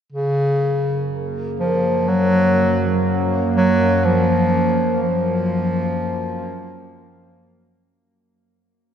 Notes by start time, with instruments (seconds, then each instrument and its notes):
0.12 synth drone F#2 A#3, bass clarinet C#3, ambient pad A#4
1.60 bass clarinet F3
1.89 ambient pad C#5 F#5
2.08 bass clarinet F#3
3.56 bass clarinet F#3
4.04 bass clarinet F3, ambient pad F3
4.79 ambient pad C5
4.85 ambient pad F4
5.02 bass clarinet F3
5.84 ambient pad G5